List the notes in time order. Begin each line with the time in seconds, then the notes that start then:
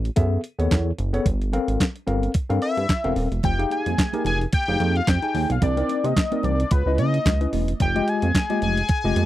Already playing: A1
0.05 closed hi-hat
0.16 F#2 B3 G#4 A4 E5, kick, closed hi-hat
0.44 closed hi-hat
0.59 D#2 B3 G#4 A4 C#5, closed hi-hat
0.71 E2, kick, snare, clap, closed hi-hat
0.98 F#1, closed hi-hat
1.13 B3 G#4 A4 C#5, closed hi-hat
1.26 G1, kick, closed hi-hat
1.42 closed hi-hat
1.53 C4 A4 A#4 F5, closed hi-hat
1.68 G#1, closed hi-hat
1.80 kick, snare, clap, closed hi-hat
1.96 closed hi-hat
2.07 G1 C4 A4 A#4 F5, closed hi-hat
2.23 closed hi-hat
2.34 kick, closed hi-hat
2.50 G2 C4 A4 A#4 F5, closed hi-hat
2.62 E5, closed hi-hat
2.77 G2, closed hi-hat
2.89 kick, snare, clap, closed hi-hat
3.04 E1 C4 A4 A#4 F5, closed hi-hat
3.16 D#1, open hi-hat
3.32 E1, closed hi-hat
3.43 F1 G5, kick, closed hi-hat, muted conga, low conga
3.59 D#4 G4 G#4 F5, closed hi-hat
3.70 G#5, closed hi-hat, muted conga
3.86 F2, closed hi-hat, high conga
3.98 kick, snare, clap, closed hi-hat
4.13 D#4 G4 G#4 A#4, closed hi-hat, high conga
4.25 F1 G#5, closed hi-hat, muted conga, low conga
4.41 closed hi-hat
4.53 G5, kick, closed hi-hat, muted conga
4.68 F1 D#4 G4 G#4 F5
4.80 F2, closed hi-hat, muted conga, high conga
4.96 F5, closed hi-hat
5.07 F2 G5, kick, snare, clap, closed hi-hat, muted conga
5.22 D#4 G#4 G5 G#5, closed hi-hat
5.34 D#2, open hi-hat, high conga
5.50 B1 F5, closed hi-hat
5.62 C2 D5, kick, closed hi-hat, muted conga, low conga
5.77 C4 D#4 A#4 D5, closed hi-hat
5.89 closed hi-hat, muted conga
6.04 C3 D#5, closed hi-hat, high conga
6.17 kick, snare, clap, closed hi-hat
6.32 C4 D#4 A#4 D5, closed hi-hat, high conga
6.43 C2 D5, closed hi-hat, low conga
6.60 closed hi-hat
6.71 C#2 B4, kick, closed hi-hat
6.86 C#2 C#4 E4 B4 D#5
6.98 C#3 D#5, closed hi-hat, muted conga, high conga
7.14 closed hi-hat
7.25 C#2, kick, snare, clap, closed hi-hat, muted conga
7.41 C#4 E4 B4 D#5, closed hi-hat
7.53 E1, open hi-hat, high conga
7.68 closed hi-hat
7.80 F1 G5, kick, closed hi-hat, low conga
7.95 G#3 F4 G4 D#5, closed hi-hat
8.08 G#5, closed hi-hat
8.22 F2, closed hi-hat, high conga
8.35 kick, snare, clap, closed hi-hat
8.50 G#3 F4 G4 D#5, closed hi-hat, high conga
8.62 F1 G#5, closed hi-hat, muted conga, low conga
8.77 closed hi-hat
8.89 kick, closed hi-hat
9.04 F1 G#3 F4 G4 D#5
9.16 F2, closed hi-hat, muted conga, high conga